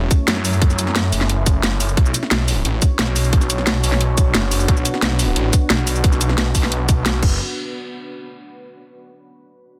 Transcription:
Already playing: A3 C#4 E4 C#5
0.11 kick, closed hi-hat, cabasa
0.28 F#2, snare, closed hi-hat
0.36 snare
0.45 open hi-hat, cabasa
0.53 cabasa
0.62 kick, closed hi-hat
0.70 snare, cabasa
0.79 closed hi-hat, cabasa
0.87 snare
0.96 snare, closed hi-hat
1.13 F#1, open hi-hat, cabasa
1.21 snare
1.29 closed hi-hat
1.46 kick, closed hi-hat, cabasa
1.63 snare, closed hi-hat
1.80 open hi-hat, cabasa
1.89 cabasa
1.97 B1 B3 D4 F#4 C#5, kick, closed hi-hat
2.06 cabasa
2.14 closed hi-hat, cabasa
2.23 snare
2.31 B1, snare, closed hi-hat
2.48 open hi-hat, cabasa
2.65 A1, closed hi-hat
2.82 kick, closed hi-hat, cabasa
2.99 B1, snare, closed hi-hat
3.07 snare
3.16 open hi-hat, cabasa
3.24 cabasa
3.33 kick, closed hi-hat
3.41 snare, cabasa
3.50 closed hi-hat, cabasa
3.58 snare
3.67 snare, closed hi-hat
3.84 B1, open hi-hat, cabasa
3.92 snare
4.01 closed hi-hat
4.18 kick, closed hi-hat, cabasa
4.35 F#1, snare, closed hi-hat
4.51 open hi-hat, cabasa
4.60 cabasa
4.68 B1 B4, kick, closed hi-hat
4.77 cabasa
4.85 closed hi-hat, cabasa
4.94 snare
5.02 B1, snare, closed hi-hat
5.19 open hi-hat, cabasa
5.36 A1, closed hi-hat
5.53 kick, closed hi-hat, cabasa
5.70 B1, snare, closed hi-hat
5.79 snare
5.87 open hi-hat, cabasa
5.96 cabasa
6.04 kick, closed hi-hat
6.12 snare, cabasa
6.21 closed hi-hat, cabasa
6.29 snare
6.38 snare, closed hi-hat
6.55 B1, kick, open hi-hat, cabasa
6.63 snare
6.72 closed hi-hat
6.89 kick, closed hi-hat, cabasa
7.06 snare, closed hi-hat
7.23 F#1, kick, crash

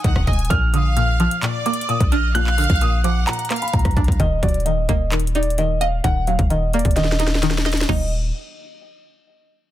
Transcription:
Already playing: A#3 D#4 D#6
0.04 A#1 D#3 F#5, kick, closed hi-hat
0.16 D#1, kick, cross-stick
0.27 D#1 D#5 G#5, kick, closed hi-hat
0.33 closed hi-hat
0.39 closed hi-hat
0.45 closed hi-hat
0.50 A#1 A#2 F6, kick, closed hi-hat
0.74 D3 F5 D#6, closed hi-hat
0.97 A#2 F6, closed hi-hat
1.20 F3 F6, closed hi-hat
1.31 closed hi-hat
1.42 A#2 D5, clap, closed hi-hat
1.66 A#3 D6, closed hi-hat
1.74 closed hi-hat
1.81 closed hi-hat
1.89 A#2 D#6, closed hi-hat
2.00 A#1, kick, closed hi-hat
2.12 D4 D#5 F6, closed hi-hat
2.35 A#2 F5 F#6, closed hi-hat
2.47 clap
2.58 D3 F6, closed hi-hat, open hi-hat
2.64 closed hi-hat
2.70 A#1, kick, closed hi-hat
2.76 closed hi-hat
2.81 A#2 D#6, closed hi-hat
3.04 F3 F#5 D6, closed hi-hat
3.27 A#2 A#5, clap, closed hi-hat
3.33 closed hi-hat
3.39 closed hi-hat
3.45 closed hi-hat
3.50 A#3 F5, cross-stick, clap, closed hi-hat
3.56 closed hi-hat
3.62 B5, closed hi-hat
3.68 closed hi-hat
3.73 A#1 A#2 A#5, kick, closed hi-hat
3.79 closed hi-hat
3.85 A#1, kick, cross-stick, closed hi-hat
3.91 closed hi-hat
3.97 A#1 D4, kick, closed hi-hat
4.04 A#1, kick, closed hi-hat
4.12 closed hi-hat
4.20 D#1 D#3 D#5, kick, closed hi-hat
4.43 D#1 F#3 D5, kick, closed hi-hat
4.49 closed hi-hat
4.54 closed hi-hat
4.60 closed hi-hat
4.65 D#3 D#5, closed hi-hat
4.89 D#1 A#3 D#5, kick, closed hi-hat
5.12 D#3, clap, closed hi-hat
5.20 closed hi-hat
5.27 closed hi-hat
5.35 D#4 D5, closed hi-hat
5.43 closed hi-hat
5.50 closed hi-hat
5.58 D#3 D#5, closed hi-hat
5.81 D#5 F5, closed hi-hat
6.04 D#1 D#3 F#5, kick, closed hi-hat
6.27 F#3 F5, closed hi-hat
6.39 D#1, kick, closed hi-hat
6.50 D#3 D#5, closed hi-hat
6.73 A#3 D5, closed hi-hat
6.79 closed hi-hat
6.85 D#1, kick, closed hi-hat
6.91 closed hi-hat
6.96 D#3 D#5, snare, closed hi-hat
7.04 snare
7.12 snare
7.20 D#4, snare, closed hi-hat
7.27 snare
7.35 snare
7.43 D#3, snare, closed hi-hat
7.51 snare
7.58 snare
7.66 D#5, snare, closed hi-hat
7.72 snare, closed hi-hat
7.77 snare, closed hi-hat
7.83 closed hi-hat
7.89 D#1 D#3 F#3 A#3 D#4 D#5, kick, crash

